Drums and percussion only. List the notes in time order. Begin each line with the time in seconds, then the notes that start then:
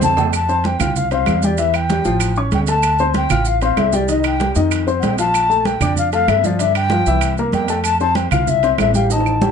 0.01 low conga, low timbale, low agogo, maracas
0.17 low conga, low timbale, low agogo, maracas
0.33 high conga, high timbale, claves, maracas
0.49 high conga, maracas
0.64 high conga, high timbale, low timbale, maracas
0.80 high conga, low conga, high timbale, claves, maracas
0.96 high conga, low conga, maracas
1.11 high conga, high timbale, maracas
1.26 high conga, high timbale, low timbale, claves, maracas
1.43 high conga, maracas
1.58 high conga, high timbale, maracas
1.74 high conga, high timbale, claves, maracas
1.90 high conga, high timbale, low timbale, maracas
2.05 high conga, maracas
2.20 high conga, high timbale, claves, maracas
2.36 high conga, maracas
2.52 high conga, high timbale, low timbale, maracas
2.67 high conga, high timbale, maracas
2.83 high conga, high timbale, claves, maracas
2.99 high conga, maracas
3.14 high conga, high timbale, low timbale, maracas
3.30 high conga, low conga, high timbale, claves, maracas
3.45 high conga, maracas
3.61 high conga, high timbale, maracas
3.77 high conga, high timbale, low timbale, claves, maracas
3.93 high conga, maracas
4.08 high conga, high timbale, maracas
4.24 high conga, high timbale, claves, maracas
4.40 high conga, high timbale, low timbale, maracas
4.55 high conga, maracas
4.71 high conga, high timbale, claves, maracas
4.88 high conga, maracas
5.02 high conga, high timbale, low timbale, maracas
5.18 high timbale, maracas
5.34 high conga, high timbale, claves, maracas
5.49 high conga, maracas
5.65 high conga, high timbale, low timbale, maracas
5.81 high conga, low conga, high timbale, claves, maracas
5.96 high conga, low conga, maracas
6.12 high conga, high timbale, maracas
6.28 high conga, high timbale, low timbale, claves, maracas
6.44 high conga, maracas
6.59 high conga, high timbale, maracas
6.75 high conga, high timbale, claves, maracas
6.90 high conga, high timbale, low timbale, maracas
7.06 high conga, maracas
7.21 high conga, high timbale, claves, maracas
7.37 high conga, maracas
7.52 high conga, high timbale, low timbale, maracas
7.68 high conga, high timbale, maracas
7.84 high conga, high timbale, claves, maracas
8.00 high conga, maracas
8.15 high conga, high timbale, low timbale, maracas
8.31 high conga, low conga, high timbale, claves, maracas
8.47 high conga, low conga, maracas
8.63 high conga, high timbale, maracas
8.78 high conga, high timbale, low timbale, claves, maracas
8.94 high conga, maracas
9.10 high conga, high timbale, maracas
9.20 high timbale
9.25 high conga, claves, maracas
9.42 high conga, high timbale, maracas